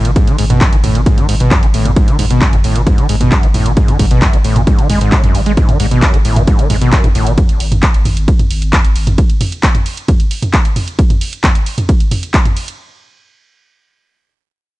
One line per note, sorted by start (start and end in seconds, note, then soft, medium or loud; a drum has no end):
0.05 0.16 G#1 medium
0.05 0.11 B2 medium
0.05 closed hi-hat medium
0.05 ride medium
0.16 0.29 G#2 medium
0.16 kick loud
0.16 closed hi-hat medium
0.16 mid tom medium
0.16 ride medium
0.27 0.37 D#3 medium
0.27 closed hi-hat medium
0.27 ride medium
0.38 0.50 G#1 loud
0.38 0.45 G#2 loud
0.38 open hi-hat loud
0.38 ride medium
0.50 0.61 G#1 medium
0.50 0.63 B2 loud
0.50 closed hi-hat medium
0.50 mid tom medium
0.50 ride medium
0.61 0.74 F#2 loud
0.61 kick loud
0.61 clap loud
0.61 closed hi-hat medium
0.61 ride medium
0.73 0.83 G#1 medium
0.73 0.76 G#3 loud
0.73 closed hi-hat medium
0.73 ride medium
0.84 0.95 G#1 loud
0.84 0.97 A2 medium
0.84 mid tom medium
0.84 open hi-hat loud
0.84 ride medium
0.95 1.06 G#1 medium
0.95 1.01 B2 medium
0.95 closed hi-hat medium
0.95 ride medium
1.06 1.19 G#2 medium
1.06 kick loud
1.06 closed hi-hat medium
1.06 ride medium
1.18 1.27 D#3 medium
1.18 closed hi-hat medium
1.18 mid tom medium
1.18 ride medium
1.29 1.40 G#1 loud
1.29 1.35 G#2 loud
1.29 open hi-hat loud
1.29 ride medium
1.40 1.51 G#1 medium
1.40 1.53 B2 loud
1.40 closed hi-hat medium
1.40 ride medium
1.51 1.64 F#2 loud
1.51 kick loud
1.51 clap loud
1.51 closed hi-hat medium
1.51 mid tom medium
1.51 ride medium
1.63 1.73 G#1 medium
1.63 1.66 G#3 loud
1.63 closed hi-hat medium
1.63 ride medium
1.74 1.85 G#1 loud
1.74 1.87 A2 medium
1.74 open hi-hat loud
1.74 ride medium
1.85 1.96 G#1 medium
1.85 1.92 B2 medium
1.85 closed hi-hat medium
1.85 mid tom medium
1.85 ride medium
1.96 2.10 G#2 medium
1.96 kick loud
1.96 closed hi-hat medium
1.96 ride medium
2.08 2.17 D#3 medium
2.08 closed hi-hat medium
2.08 ride medium
2.19 2.30 G#1 loud
2.19 2.25 G#2 loud
2.19 mid tom medium
2.19 open hi-hat loud
2.19 ride medium
2.30 2.41 G#1 medium
2.30 2.43 B2 loud
2.30 closed hi-hat medium
2.30 ride medium
2.42 2.55 F#2 loud
2.42 kick loud
2.42 clap loud
2.42 closed hi-hat medium
2.42 ride medium
2.53 2.64 G#1 medium
2.53 2.57 G#3 loud
2.53 closed hi-hat medium
2.53 mid tom medium
2.53 ride medium
2.64 2.75 G#1 loud
2.64 2.77 A2 medium
2.64 open hi-hat loud
2.64 ride medium
2.76 2.86 G#1 medium
2.76 2.82 B2 medium
2.76 closed hi-hat medium
2.76 ride medium
2.87 3.00 G#2 medium
2.87 kick loud
2.87 closed hi-hat medium
2.87 mid tom medium
2.87 ride medium
2.98 3.07 D#3 medium
2.98 closed hi-hat medium
2.98 ride medium
3.09 3.20 G#1 loud
3.09 3.16 G#2 loud
3.09 open hi-hat loud
3.09 ride medium
3.21 3.32 G#1 medium
3.21 3.33 B2 loud
3.21 closed hi-hat medium
3.21 mid tom medium
3.21 ride medium
3.32 3.45 F#2 loud
3.32 kick loud
3.32 clap loud
3.32 closed hi-hat medium
3.32 ride medium
3.43 3.54 G#1 medium
3.43 3.47 G#3 loud
3.43 closed hi-hat medium
3.43 ride medium
3.54 3.65 G#1 loud
3.54 3.67 A2 medium
3.54 mid tom medium
3.54 open hi-hat loud
3.54 ride medium
3.66 3.77 G#1 medium
3.66 3.72 B2 medium
3.66 closed hi-hat medium
3.66 ride medium
3.77 3.90 G#2 medium
3.77 kick loud
3.77 closed hi-hat medium
3.77 ride medium
3.88 3.98 D#3 medium
3.88 closed hi-hat medium
3.88 mid tom medium
3.88 ride medium
3.99 4.10 G#1 loud
3.99 4.06 G#2 loud
3.99 kick medium
3.99 open hi-hat loud
3.99 ride medium
4.11 4.22 G#1 medium
4.11 4.24 B2 loud
4.11 closed hi-hat medium
4.11 ride medium
4.22 4.35 F#2 loud
4.22 kick loud
4.22 clap loud
4.22 closed hi-hat medium
4.22 mid tom medium
4.22 ride medium
4.33 4.44 G#1 medium
4.33 4.37 G#3 loud
4.33 closed hi-hat medium
4.33 ride medium
4.44 4.56 G#1 loud
4.44 4.58 A2 medium
4.44 open hi-hat loud
4.44 ride medium
4.56 4.67 G#1 medium
4.56 4.62 B2 medium
4.56 closed hi-hat medium
4.56 mid tom medium
4.56 ride medium
4.67 4.80 G#2 medium
4.67 kick loud
4.67 closed hi-hat medium
4.67 ride medium
4.79 4.88 D#3 medium
4.79 closed hi-hat medium
4.79 ride medium
4.90 5.01 G#1 loud
4.90 4.99 G#3 medium
4.90 mid tom medium
4.90 open hi-hat loud
4.90 ride medium
5.01 5.12 G#1 medium
5.01 5.14 G#2 loud
5.01 closed hi-hat medium
5.01 ride medium
5.12 5.22 A2 loud
5.12 kick loud
5.12 clap loud
5.12 closed hi-hat medium
5.12 ride medium
5.24 5.34 G#1 medium
5.24 5.36 F#2 loud
5.24 closed hi-hat medium
5.24 mid tom medium
5.24 ride medium
5.35 5.46 G#1 loud
5.35 5.41 G#2 medium
5.35 open hi-hat loud
5.35 ride medium
5.46 5.57 G#1 medium
5.46 5.52 G#3 loud
5.46 closed hi-hat medium
5.46 ride medium
5.57 5.70 G#2 medium
5.57 kick loud
5.57 closed hi-hat medium
5.57 ride medium
5.69 5.78 D#3 medium
5.69 closed hi-hat medium
5.69 mid tom medium
5.69 ride medium
5.80 5.91 G#1 loud
5.80 5.86 G#2 loud
5.80 open hi-hat loud
5.80 ride medium
5.91 6.02 G#1 medium
5.91 6.04 B2 loud
5.91 closed hi-hat medium
5.91 ride medium
6.02 6.15 F#2 loud
6.02 kick loud
6.02 clap loud
6.02 closed hi-hat medium
6.02 mid tom medium
6.02 ride medium
6.14 6.24 G#1 medium
6.14 6.18 G#3 loud
6.14 closed hi-hat medium
6.14 ride medium
6.25 6.36 G#1 medium
6.25 6.38 A2 medium
6.25 open hi-hat loud
6.25 ride medium
6.36 6.47 G#1 medium
6.36 6.43 B2 medium
6.36 closed hi-hat medium
6.36 mid tom medium
6.36 ride medium
6.47 6.60 G#2 medium
6.47 kick loud
6.47 closed hi-hat medium
6.47 ride medium
6.59 6.68 D#3 medium
6.59 closed hi-hat medium
6.59 ride medium
6.70 6.81 G#1 loud
6.70 6.76 G#2 loud
6.70 mid tom medium
6.70 open hi-hat loud
6.70 ride medium
6.81 6.92 G#1 medium
6.81 6.94 B2 loud
6.81 closed hi-hat medium
6.81 ride medium
6.93 7.06 F#2 loud
6.93 kick loud
6.93 clap loud
6.93 closed hi-hat medium
6.93 ride medium
7.04 7.15 G#1 medium
7.04 7.08 G#3 loud
7.04 closed hi-hat medium
7.04 mid tom medium
7.04 ride medium
7.15 7.26 G#1 loud
7.15 7.28 A2 medium
7.15 open hi-hat medium
7.15 ride medium
7.27 7.38 G#1 medium
7.27 7.33 B2 medium
7.27 closed hi-hat medium
7.27 ride medium
7.38 kick loud
7.38 closed hi-hat medium
7.38 mid tom medium
7.38 ride medium
7.49 closed hi-hat medium
7.49 ride medium
7.60 7.71 G#1 loud
7.60 open hi-hat loud
7.60 ride medium
7.72 7.83 G#1 medium
7.72 closed hi-hat medium
7.72 mid tom medium
7.72 ride medium
7.83 kick loud
7.83 clap loud
7.83 closed hi-hat medium
7.83 ride medium
7.94 8.05 G#1 medium
7.94 closed hi-hat medium
7.94 ride medium
8.05 8.16 G#1 loud
8.05 mid tom medium
8.05 open hi-hat medium
8.05 ride medium
8.17 8.28 G#1 medium
8.17 closed hi-hat medium
8.17 ride medium
8.28 kick loud
8.28 closed hi-hat medium
8.28 ride medium
8.39 closed hi-hat medium
8.39 mid tom medium
8.39 ride medium
8.51 8.61 G#1 loud
8.51 open hi-hat loud
8.51 ride medium
8.62 8.73 G#1 medium
8.62 closed hi-hat medium
8.62 ride medium
8.73 kick loud
8.73 clap loud
8.73 closed hi-hat medium
8.73 mid tom medium
8.73 ride medium
8.85 8.95 G#1 medium
8.85 closed hi-hat medium
8.85 ride medium
8.96 9.07 G#1 loud
8.96 open hi-hat medium
8.96 ride medium
9.07 9.18 G#1 medium
9.07 closed hi-hat medium
9.07 mid tom medium
9.07 ride medium
9.18 kick loud
9.18 closed hi-hat medium
9.18 ride medium
9.30 closed hi-hat medium
9.30 ride medium
9.41 mid tom medium
9.41 open hi-hat loud
9.41 ride medium
9.52 closed hi-hat medium
9.52 ride medium
9.63 kick loud
9.63 clap loud
9.63 closed hi-hat medium
9.63 ride medium
9.75 closed hi-hat medium
9.75 mid tom medium
9.75 ride medium
9.86 open hi-hat medium
9.86 ride medium
9.97 closed hi-hat medium
9.97 ride medium
10.08 kick loud
10.08 closed hi-hat medium
10.08 mid tom medium
10.08 ride medium
10.20 closed hi-hat medium
10.20 ride medium
10.31 open hi-hat loud
10.31 ride medium
10.42 closed hi-hat medium
10.42 mid tom medium
10.42 ride medium
10.54 kick loud
10.54 clap loud
10.54 closed hi-hat medium
10.54 ride medium
10.65 closed hi-hat medium
10.65 ride medium
10.76 mid tom medium
10.76 open hi-hat medium
10.76 ride medium
10.88 closed hi-hat medium
10.88 ride medium
10.99 kick loud
10.99 closed hi-hat medium
10.99 ride medium
11.10 closed hi-hat medium
11.10 mid tom medium
11.10 ride medium
11.21 open hi-hat loud
11.21 ride medium
11.33 closed hi-hat medium
11.33 ride medium
11.44 kick loud
11.44 clap loud
11.44 closed hi-hat medium
11.44 mid tom medium
11.44 ride medium
11.55 closed hi-hat medium
11.55 ride medium
11.66 open hi-hat loud
11.66 ride medium
11.78 closed hi-hat medium
11.78 mid tom medium
11.78 ride medium
11.89 kick loud
11.89 closed hi-hat medium
11.89 ride medium
12.00 closed hi-hat medium
12.00 ride medium
12.11 mid tom medium
12.11 open hi-hat loud
12.11 ride medium
12.23 closed hi-hat medium
12.23 ride medium
12.34 kick loud
12.34 clap loud
12.34 closed hi-hat medium
12.34 ride medium
12.45 closed hi-hat medium
12.45 mid tom medium
12.45 ride medium
12.57 open hi-hat medium
12.57 ride medium
12.68 closed hi-hat medium
12.68 ride medium